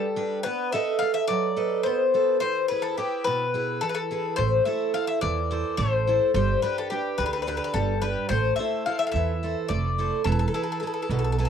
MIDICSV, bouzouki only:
0, 0, Header, 1, 2, 480
1, 0, Start_track
1, 0, Key_signature, 0, "minor"
1, 0, Tempo, 561272
1, 377, Time_signature, 7, 3, 24, 8
1, 9827, End_track
2, 0, Start_track
2, 0, Title_t, "Bouzouki"
2, 0, Program_c, 0, 25
2, 0, Note_on_c, 0, 69, 85
2, 337, Note_off_c, 0, 69, 0
2, 369, Note_on_c, 0, 71, 108
2, 597, Note_off_c, 0, 71, 0
2, 618, Note_on_c, 0, 76, 90
2, 840, Note_off_c, 0, 76, 0
2, 844, Note_on_c, 0, 77, 93
2, 970, Note_off_c, 0, 77, 0
2, 974, Note_on_c, 0, 76, 98
2, 1087, Note_off_c, 0, 76, 0
2, 1090, Note_on_c, 0, 74, 102
2, 1543, Note_off_c, 0, 74, 0
2, 1568, Note_on_c, 0, 72, 85
2, 2023, Note_off_c, 0, 72, 0
2, 2055, Note_on_c, 0, 72, 103
2, 2291, Note_off_c, 0, 72, 0
2, 2294, Note_on_c, 0, 71, 94
2, 2411, Note_off_c, 0, 71, 0
2, 2411, Note_on_c, 0, 69, 81
2, 2530, Note_off_c, 0, 69, 0
2, 2544, Note_on_c, 0, 67, 68
2, 2769, Note_off_c, 0, 67, 0
2, 2774, Note_on_c, 0, 71, 98
2, 3258, Note_on_c, 0, 69, 93
2, 3276, Note_off_c, 0, 71, 0
2, 3319, Note_off_c, 0, 69, 0
2, 3330, Note_on_c, 0, 71, 67
2, 3374, Note_on_c, 0, 69, 83
2, 3389, Note_off_c, 0, 71, 0
2, 3715, Note_off_c, 0, 69, 0
2, 3729, Note_on_c, 0, 72, 96
2, 3961, Note_off_c, 0, 72, 0
2, 3980, Note_on_c, 0, 76, 77
2, 4222, Note_off_c, 0, 76, 0
2, 4225, Note_on_c, 0, 77, 90
2, 4336, Note_off_c, 0, 77, 0
2, 4339, Note_on_c, 0, 76, 89
2, 4455, Note_off_c, 0, 76, 0
2, 4459, Note_on_c, 0, 74, 94
2, 4935, Note_off_c, 0, 74, 0
2, 4939, Note_on_c, 0, 72, 87
2, 5389, Note_off_c, 0, 72, 0
2, 5427, Note_on_c, 0, 72, 92
2, 5661, Note_off_c, 0, 72, 0
2, 5664, Note_on_c, 0, 71, 85
2, 5777, Note_off_c, 0, 71, 0
2, 5800, Note_on_c, 0, 69, 77
2, 5898, Note_off_c, 0, 69, 0
2, 5901, Note_on_c, 0, 67, 72
2, 6127, Note_off_c, 0, 67, 0
2, 6138, Note_on_c, 0, 71, 88
2, 6196, Note_off_c, 0, 71, 0
2, 6206, Note_on_c, 0, 71, 64
2, 6257, Note_off_c, 0, 71, 0
2, 6267, Note_on_c, 0, 71, 67
2, 6335, Note_off_c, 0, 71, 0
2, 6345, Note_on_c, 0, 71, 61
2, 6386, Note_off_c, 0, 71, 0
2, 6397, Note_on_c, 0, 71, 71
2, 6463, Note_off_c, 0, 71, 0
2, 6473, Note_on_c, 0, 71, 65
2, 6524, Note_off_c, 0, 71, 0
2, 6535, Note_on_c, 0, 71, 70
2, 6602, Note_off_c, 0, 71, 0
2, 6615, Note_on_c, 0, 69, 86
2, 6855, Note_on_c, 0, 71, 87
2, 6868, Note_off_c, 0, 69, 0
2, 7083, Note_off_c, 0, 71, 0
2, 7087, Note_on_c, 0, 72, 105
2, 7315, Note_off_c, 0, 72, 0
2, 7318, Note_on_c, 0, 76, 84
2, 7572, Note_off_c, 0, 76, 0
2, 7575, Note_on_c, 0, 77, 80
2, 7684, Note_off_c, 0, 77, 0
2, 7687, Note_on_c, 0, 76, 92
2, 7751, Note_off_c, 0, 76, 0
2, 7754, Note_on_c, 0, 77, 73
2, 7792, Note_off_c, 0, 77, 0
2, 7796, Note_on_c, 0, 76, 87
2, 8280, Note_off_c, 0, 76, 0
2, 8283, Note_on_c, 0, 74, 88
2, 8758, Note_off_c, 0, 74, 0
2, 8761, Note_on_c, 0, 69, 83
2, 8816, Note_off_c, 0, 69, 0
2, 8826, Note_on_c, 0, 69, 59
2, 8878, Note_off_c, 0, 69, 0
2, 8889, Note_on_c, 0, 69, 57
2, 8951, Note_off_c, 0, 69, 0
2, 8961, Note_on_c, 0, 69, 58
2, 9007, Note_off_c, 0, 69, 0
2, 9018, Note_on_c, 0, 69, 55
2, 9086, Note_off_c, 0, 69, 0
2, 9096, Note_on_c, 0, 69, 49
2, 9157, Note_off_c, 0, 69, 0
2, 9168, Note_on_c, 0, 69, 56
2, 9225, Note_off_c, 0, 69, 0
2, 9235, Note_on_c, 0, 69, 45
2, 9287, Note_off_c, 0, 69, 0
2, 9297, Note_on_c, 0, 69, 48
2, 9343, Note_off_c, 0, 69, 0
2, 9353, Note_on_c, 0, 69, 47
2, 9418, Note_off_c, 0, 69, 0
2, 9428, Note_on_c, 0, 69, 52
2, 9488, Note_off_c, 0, 69, 0
2, 9498, Note_on_c, 0, 69, 54
2, 9555, Note_off_c, 0, 69, 0
2, 9567, Note_on_c, 0, 69, 52
2, 9606, Note_off_c, 0, 69, 0
2, 9616, Note_on_c, 0, 69, 47
2, 9674, Note_off_c, 0, 69, 0
2, 9684, Note_on_c, 0, 69, 52
2, 9727, Note_off_c, 0, 69, 0
2, 9737, Note_on_c, 0, 69, 52
2, 9783, Note_off_c, 0, 69, 0
2, 9793, Note_on_c, 0, 69, 61
2, 9827, Note_off_c, 0, 69, 0
2, 9827, End_track
0, 0, End_of_file